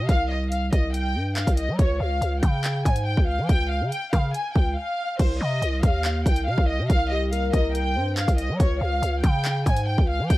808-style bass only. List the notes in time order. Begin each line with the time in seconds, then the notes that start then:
0.09 C2
0.73 C2
1.15 G2
1.47 C2
1.68 G3
1.79 C#2
2.00 C#2
2.22 C#2
2.43 C#3
2.85 G#2
3.17 C#2
3.39 F3
3.49 C#2
3.81 C#3
4.13 C#3
4.56 C#2
5.19 C2
5.41 C3
5.62 C2
5.83 D#2
6.26 C2
6.47 C3
6.58 C2
6.79 C3
6.90 C2
7.53 C2
7.96 G2
8.28 C2
8.49 G3
8.60 C#2
8.81 C#2
9.02 C#2
9.24 C#3
9.66 G#2
9.98 C#2
10.19 F3
10.30 C#2